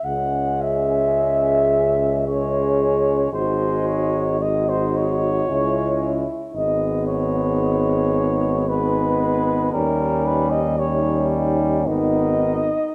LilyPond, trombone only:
\new Staff \with { instrumentName = "Trombone" } { \clef bass \time 3/4 \key cis \minor \tempo 4 = 56 gis2 gis4 | gis4 gis4 gis8. r16 | gis2 gis4 | g4 g4 dis8. r16 | }